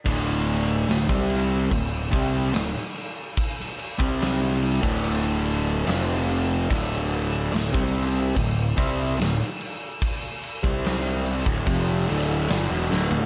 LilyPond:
<<
  \new Staff \with { instrumentName = "Distorted electric guitar" } { \clef bass \time 4/4 \key d \minor \tempo 4 = 72 <d, a, d>4 <d, a,>16 <c g c'>8. <d, a,>8 <c g c'>8 <d, a,>16 r8. | r8. <c g c'>4 <d, a, d>4~ <d, a, d>16 <f, c f>4 | <d, a, d>4 <d, a,>16 <c g c'>8. <d, a,>8 <c g c'>8 <d, a,>16 r8. | r8. <c g c'>4 <d, a,>16 <f, c f>8 <d, a, d>8 <g, d>16 <e, b,>16 <d, a, d>8 | }
  \new Staff \with { instrumentName = "Picked electric bass" } { \clef bass \time 4/4 \key d \minor d,,4 d,,16 c,8. d,,8 c,8 d,,16 r8. | r8. c,4 d,,4~ d,,16 f,,4 | d,,4 d,,16 c,8. d,,8 c,8 d,,16 r8. | r8. c,4 d,,16 f,,8 d,,8 g,,16 e,,16 d,,8 | }
  \new DrumStaff \with { instrumentName = "Drums" } \drummode { \time 4/4 <cymc bd>8 cymc8 <cymc sn>16 bd16 cymc8 <cymc bd>8 <cymc bd>8 <cymc sn>8 cymc8 | <cymc bd>16 sn16 cymc16 bd16 <cymc sn>8 cymc16 bd16 cymc8 cymc8 <cymc sn>8 cymc8 | <cymc bd>8 cymc8 <cymc sn>16 bd16 cymc8 <cymc bd>8 <cymc bd>8 <cymc sn>8 cymc8 | <cymc bd>8 cymc16 bd16 <cymc sn>8 cymc16 bd16 <cymc bd>8 cymc8 <cymc sn>8 sn16 tomfh16 | }
>>